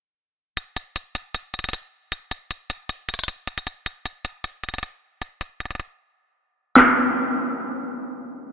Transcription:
0.57 closed hi-hat
0.77 closed hi-hat
0.96 closed hi-hat
1.15 closed hi-hat
1.35 closed hi-hat
1.54 closed hi-hat
1.59 closed hi-hat
1.64 closed hi-hat
1.69 closed hi-hat
1.73 closed hi-hat
2.12 closed hi-hat
2.31 closed hi-hat
2.51 closed hi-hat
2.70 closed hi-hat
2.89 closed hi-hat
3.09 closed hi-hat
3.14 closed hi-hat
3.19 closed hi-hat
3.24 closed hi-hat
3.28 closed hi-hat
3.47 closed hi-hat
3.58 closed hi-hat
3.67 closed hi-hat
3.86 closed hi-hat
4.06 closed hi-hat
4.25 closed hi-hat
4.44 closed hi-hat
4.64 closed hi-hat
4.69 closed hi-hat
4.74 closed hi-hat
4.78 closed hi-hat
4.83 closed hi-hat
5.22 closed hi-hat
5.41 closed hi-hat
5.60 closed hi-hat
5.65 closed hi-hat
5.71 closed hi-hat
5.75 closed hi-hat
5.80 closed hi-hat
6.76 snare, clap

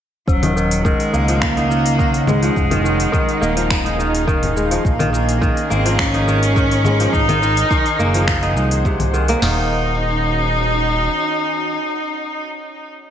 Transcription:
0.28 D#1 F#3 C#4 D#4 C5 F#5, kick, cabasa
0.43 D#3, open hi-hat, low conga, cabasa
0.56 D#3, cabasa
0.71 open hi-hat, cabasa
0.84 D#3 G#3, kick, cabasa
1.00 open hi-hat, cabasa
1.13 C#2 A#3, cabasa
1.28 F3, open hi-hat, cabasa
1.41 A#3, finger snap, kick, cabasa
1.57 D#4, open hi-hat, cabasa
1.70 D#3, cabasa
1.86 open hi-hat, cabasa
1.98 D#3, kick, cabasa
2.14 open hi-hat, cabasa
2.26 G#3, low conga, cabasa
2.42 F3, open hi-hat, cabasa
2.56 F1 G#4 F5, kick, cabasa
2.71 D#3, open hi-hat, low conga, cabasa
2.84 D#3, cabasa
3.00 open hi-hat, cabasa
3.12 D#3, kick, cabasa
3.29 open hi-hat, cabasa
3.41 D#1 A#3, cabasa
3.56 F3, open hi-hat, cabasa
3.71 finger snap, kick, cabasa
3.85 D#4, open hi-hat, cabasa
3.99 D#3, cabasa
4.15 open hi-hat, cabasa
4.27 D#3, kick, cabasa
4.43 open hi-hat, low conga, cabasa
4.56 G#3, cabasa
4.71 F3, open hi-hat, cabasa
4.85 A#1 A#3 C#4 G#4 A#4, kick, cabasa
4.99 D#3, open hi-hat, low conga, cabasa
5.13 D#3, cabasa
5.29 open hi-hat, cabasa
5.41 D#3, kick, cabasa
5.57 open hi-hat, cabasa
5.70 G#1 A#3 C4, cabasa
5.86 F3, open hi-hat, cabasa
5.99 C#4, finger snap, kick, cabasa
6.14 D#4, open hi-hat, cabasa
6.27 D#3, cabasa
6.43 open hi-hat, cabasa
6.56 D#3, kick, cabasa
6.71 open hi-hat, cabasa
6.85 G#3, low conga, cabasa
7.00 F3, open hi-hat, cabasa
7.13 G#1 D#4 G#4 C5 F#5, kick, cabasa
7.29 D#3, open hi-hat, low conga, cabasa
7.42 D#3, cabasa
7.57 open hi-hat, cabasa
7.71 D#3, kick, cabasa
7.86 open hi-hat, cabasa
7.99 F#1 A#3, cabasa
8.14 F3, open hi-hat, cabasa
8.28 finger snap, kick, cabasa
8.43 D#4, open hi-hat, cabasa
8.56 C2 D#4, cabasa
8.71 open hi-hat, cabasa
8.85 C3, kick, cabasa
9.00 open hi-hat, low conga, cabasa
9.13 D#3, cabasa
9.28 A#3, open hi-hat, cabasa
9.41 D#1 D#3 C#4 D#4 F#4 D#5, snare, floor tom, crash

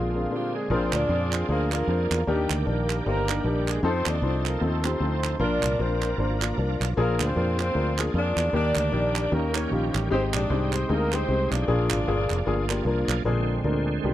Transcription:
Already playing: A#1 A#2 D3 F3 G#3 A#3 C4 D4 F4 G#4
0.15 C4 D4 G#4 A#4
0.31 G3 C4 D4 G4 G#4 A#4
0.55 G#3 G#4
0.70 A#1 A#2 F3 A#3 C4 D4 F4 G#4 A#4 C5
0.93 D2 D4 F4 G#4 D5, clap
1.09 F2 D4 F4 G#4 C5
1.32 C4 C5, clap
1.49 D2 A#3 D4 F4 G#4 A#4 C5
1.72 A#3 D4 F4 G#4 A#4, clap
1.87 F2 D4 F4 G#4 C5
2.11 E2, clap
2.27 D#2 D#3 G3 A#3 D4 D#4 G4 A#4
2.50 D2, clap
2.66 A#1 A#3 D4 D#4 G4 A#4
2.90 clap
3.05 G1 A#3 D4 D#4 G4 A#4 C5
3.28 D4 D#4 G4 A#4, clap
3.44 A#1 G3 D4 D#4 G4 A#4
3.68 G#3 G#4, clap
3.83 F2 F3 C4 D#4 F4 A4 C5
4.06 D#2 D4 A4 D5, clap
4.22 C2 C4 D#4 F4 C5
4.46 A#3 A#4, clap
4.61 D#2 A3 C4 D#4 F4 A4 C5
4.84 C4 D#4 F4 G4 A4 C5, clap
5.00 D2 C4 D#4 F4 A4
5.24 clap
5.39 A#1 A#2 F3 A#3 D4 F4 A#4 D5
5.63 C2, clap
5.79 A#1 A#3 C4 D4 F4 A#4 C5
6.02 clap
6.18 G#1 A#3 D4 F4 A#4 C5
6.42 A#3 D4 F4 A#4, clap
6.58 C2 A#3 D4 F4 A#4
6.80 B1, clap
6.97 A#1 A#2 F3 A#3 D4 F4 G#4 A#4
7.20 D2 C4 F4 G#4 C5, clap
7.36 F2 A#3 D4 F4 A#4
7.59 C4 F4 G#4 C5, clap
7.75 D2 A#3 D4 F4 A#4
7.98 A#3 D4 F4 G#4, clap
8.14 F2 A#3 D4 F4 G#4 D5
8.36 E2, clap
8.53 D#2 D#3 A#3 D4 D#4 G4 A#4 D5
8.75 D2 D4 G4 A#4 D5, clap
8.92 A#1 A#3 D4 D#4 G4
9.16 clap
9.31 D#2 D#3 A#3 C#4 D#4 G4 A#4
9.55 A#3 C#4 D#4 A#4 C#5, clap
9.71 A#1 F3 A#3 C#4 D#4 F4 G4
9.95 A1 G3 G4, clap
10.10 G#1 G#2 G#3 C4 D#4 G4 C5
10.34 A#1 D4 G4 D5, clap
10.50 C2 G#3 C4 D#4 G4
10.73 C4 C5, clap
10.89 D2 G#3 A#3 C4 D#4 G4 G#4 A#4
11.12 G#3 C4 D#4 G4 C5, clap
11.28 C2 G#3 C4 D#4 G4
11.51 B1 D4 F4 G#4 D5, clap
11.67 A#1 A#2 F3 A#3 D4 F4 G#4
11.90 G#1, clap
12.08 G1 A#3 D4 F4 G#4
12.30 F1, clap
12.46 G1 A#3 D4 F4 G#4
12.70 A#3 D4 F4 G4, clap
12.85 C2 A#3 D4 F4 A#4
13.08 B1, clap
13.24 A#1 A#2 D3 G#3 A#3 C4 D4 F4 G#4
13.64 D2 A#3 D4 F4 A#4
14.04 C2 A#3 D4 F4 G4

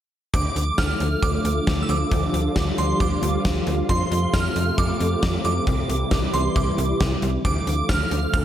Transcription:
0.34 D2 D3 F3 A3 F4 D6, kick, closed hi-hat
0.56 D2, closed hi-hat
0.78 D2 F6, kick, snare, closed hi-hat
1.00 D2, closed hi-hat
1.23 D2 D6, kick, closed hi-hat
1.45 D2, closed hi-hat
1.67 D2, kick, snare, closed hi-hat
1.82 E6
1.89 D2 D6, closed hi-hat
2.11 D2 G3, kick, closed hi-hat
2.34 D2, closed hi-hat
2.56 D2, kick, snare, closed hi-hat
2.78 D2 C6, closed hi-hat
3.00 D2 D6, kick, closed hi-hat
3.23 D2, closed hi-hat
3.45 D2, kick, snare, closed hi-hat
3.67 D2, closed hi-hat
3.89 F2 C3 A3 C6, kick, closed hi-hat
4.11 F2, closed hi-hat
4.33 F2 F6, kick, snare, closed hi-hat
4.56 F2, closed hi-hat
4.78 F2 D6, kick, closed hi-hat
5.00 F2, closed hi-hat
5.23 F2, kick, snare, closed hi-hat
5.45 F2 D6, closed hi-hat
5.67 C2 E3 G3 E4, kick, closed hi-hat
5.89 C2, closed hi-hat
6.11 C2, kick, snare, closed hi-hat
6.34 C2 C6, closed hi-hat
6.56 C2 D6, kick, closed hi-hat
6.78 C2, closed hi-hat
7.00 C2, kick, snare, closed hi-hat
7.22 C2, closed hi-hat
7.45 D2 D3 F3 A3 F4 D6, kick, closed hi-hat
7.67 D2, closed hi-hat
7.89 D2 F6, kick, snare, closed hi-hat
8.11 D2, closed hi-hat
8.34 D2 F6, kick, closed hi-hat

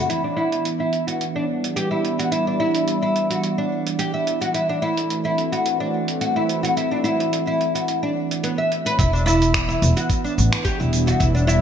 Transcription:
Already playing: A3 C4 F#4
0.09 E3 E4, closed hi-hat
0.24 D4
0.37 B3 E4
0.52 closed hi-hat
0.65 closed hi-hat
0.80 E4
0.93 closed hi-hat
1.07 F#4, closed hi-hat
1.21 closed hi-hat
1.26 D4
1.36 D4
1.51 G3
1.64 closed hi-hat
1.76 G4, closed hi-hat
1.91 E4
2.05 closed hi-hat
2.19 F#4, closed hi-hat
2.32 E4, closed hi-hat
2.47 D4
2.60 E4
2.75 closed hi-hat
2.88 closed hi-hat
3.02 E4
3.16 closed hi-hat
3.30 F#4, closed hi-hat
3.44 closed hi-hat
3.58 D4
3.87 closed hi-hat
3.99 G4, closed hi-hat
4.14 E4
4.27 closed hi-hat
4.41 F#4, closed hi-hat
4.54 E4, closed hi-hat
4.69 D4
4.74 A3
4.82 E4
4.97 closed hi-hat
5.09 C4, closed hi-hat
5.13 F#4
5.25 E4
5.38 closed hi-hat
5.52 F#4, closed hi-hat
5.66 closed hi-hat
5.80 D4
6.08 closed hi-hat
6.21 F#4, closed hi-hat
6.36 E4
6.49 closed hi-hat
6.63 F#4, closed hi-hat
6.77 E4, closed hi-hat
6.91 D4
7.04 E4, closed hi-hat
7.20 closed hi-hat
7.33 closed hi-hat
7.47 E4
7.61 closed hi-hat
7.75 F#4, closed hi-hat
7.88 closed hi-hat
8.03 D4
8.31 closed hi-hat
8.43 B3, closed hi-hat
8.58 E5
8.72 closed hi-hat
8.86 B4, closed hi-hat
8.99 E1 E4, kick, closed hi-hat, shaker
9.13 D4, shaker
9.26 E4, low woodblock, shaker
9.42 closed hi-hat, shaker
9.47 B3
9.54 finger snap, kick, closed hi-hat, shaker
9.69 E4, shaker
9.82 E1, closed hi-hat, shaker
9.97 F#4, closed hi-hat, shaker
10.10 kick, closed hi-hat, shaker
10.16 D4
10.24 D4, shaker
10.38 A1, shaker
10.53 finger snap, closed hi-hat, shaker
10.65 G4, kick, closed hi-hat, shaker
10.77 E1 G3 E4, shaker
10.93 closed hi-hat, shaker
11.07 F#4, closed hi-hat, low woodblock, shaker
11.20 E1 E4, kick, closed hi-hat, shaker
11.35 D4, shaker
11.47 E4, low woodblock, shaker

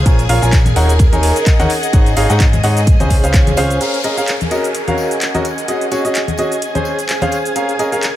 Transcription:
Already playing: C#4 G#4 C5 F5 G#5
0.06 A#1 F4 A#4 C#5 G#5, kick, closed hi-hat, ride, tambourine, shaker
0.19 closed hi-hat, tambourine, shaker
0.29 A#1 F4 A#4 C#5 F5, open hi-hat, ride, tambourine
0.37 A#4
0.42 A#1 F4 A#4 C#5 G#5, snare, closed hi-hat, tambourine, shaker
0.52 kick, snare, clap, closed hi-hat, tambourine, shaker
0.66 closed hi-hat, tambourine, high conga, shaker
0.76 D#1 D#4 A#4 C#5 F#5, open hi-hat, ride, tambourine
0.89 snare, closed hi-hat, tambourine, shaker
0.99 kick, closed hi-hat, ride, tambourine, shaker
1.13 D#1 D#4 A#4 C#5 G#5, closed hi-hat, high conga, shaker
1.19 D#5 F#5, tambourine
1.23 open hi-hat, ride
1.36 snare, closed hi-hat, tambourine, shaker
1.46 kick, snare, clap, closed hi-hat, ride, shaker
1.59 D#2 D#4 A#4 C#5 F#5, snare, closed hi-hat, tambourine, high conga, shaker
1.69 open hi-hat, ride, tambourine
1.83 closed hi-hat, tambourine, shaker
1.93 G#1 D#4 G#4 C#5 F#5, kick, closed hi-hat, ride, tambourine, shaker
2.05 G#4, closed hi-hat, tambourine, shaker
2.16 G#1 D#4 G#4 C#5 F5, open hi-hat, ride, tambourine
2.30 G#2 D#4 G#4 C#5 F#5, snare, clap, closed hi-hat, tambourine, shaker
2.40 kick, snare, clap, closed hi-hat, ride, tambourine, shaker
2.53 closed hi-hat, tambourine, high conga, shaker
2.63 G#2 D#4 G#4 C#5 F#5, open hi-hat, ride, tambourine
2.77 snare, closed hi-hat, tambourine, shaker
2.87 C#4, kick, closed hi-hat, ride, tambourine, shaker
3.00 C#2 C#4 G#4 C5 G#5, closed hi-hat, tambourine, high conga, shaker
3.10 kick, snare, open hi-hat, ride, tambourine
3.24 C#2 C#4 G#4 C5 F5, closed hi-hat, ride, tambourine, shaker
3.30 C5 F5, snare, ride
3.34 kick, clap, closed hi-hat, tambourine, shaker
3.47 closed hi-hat, tambourine, high conga, shaker
3.57 C#2 C#4 G#4 C5 F5, snare, open hi-hat, ride, tambourine
3.70 closed hi-hat, tambourine, shaker
3.80 C#4 G#4 A#4 F5 G#5, closed hi-hat, tambourine, downlifter, shaker
3.94 closed hi-hat, shaker
4.04 C#4 G#4 A#4 D#5, closed hi-hat, tambourine
4.13 C#4 G#4 A#4 F5, closed hi-hat
4.18 tambourine, shaker
4.28 clap, closed hi-hat, tambourine, shaker
4.41 closed hi-hat, high conga, shaker
4.51 C#4 F#4 A#4 D#5, closed hi-hat, tambourine
4.64 closed hi-hat, tambourine, shaker
4.75 closed hi-hat, tambourine, shaker
4.87 C#4 F#4 A#4 F5 F#5, closed hi-hat, high conga, shaker
4.94 D#5, tambourine
5.11 closed hi-hat, shaker
5.21 clap, closed hi-hat, tambourine, shaker
5.34 C#4 F#4 A#4 D#5, closed hi-hat, tambourine, high conga, shaker
5.45 closed hi-hat, tambourine
5.58 closed hi-hat, tambourine, shaker
5.68 C#4 F#4 G#4 D#5, closed hi-hat, tambourine, shaker
5.81 closed hi-hat, shaker
5.91 C#4 F#4 G#4 C#5, closed hi-hat, tambourine
6.05 C#4 F#4 G#4 D#5, closed hi-hat, tambourine, shaker
6.15 clap, closed hi-hat, tambourine, shaker
6.28 closed hi-hat, high conga, shaker
6.38 C#4 F#4 G#4 D#5, closed hi-hat, tambourine
6.52 closed hi-hat, tambourine, shaker
6.62 closed hi-hat, tambourine, shaker
6.75 C#4 G#4 C5 G#5, closed hi-hat, high conga, shaker
6.85 tambourine
6.99 closed hi-hat, tambourine, shaker
7.05 C5 F5
7.09 clap, closed hi-hat, tambourine, shaker
7.22 C#4 G#4 C5 F5, closed hi-hat, tambourine, high conga, shaker
7.32 closed hi-hat, tambourine
7.45 closed hi-hat, tambourine, shaker
7.56 C#4 G#4 A#4 F5, closed hi-hat, tambourine, riser, shaker
7.69 closed hi-hat, shaker
7.79 C#4 G#4 A#4 D#5, closed hi-hat, tambourine
7.85 A#4
7.92 C#4 G#4 A#4 F5, closed hi-hat, tambourine, shaker
8.02 clap, closed hi-hat, tambourine, shaker

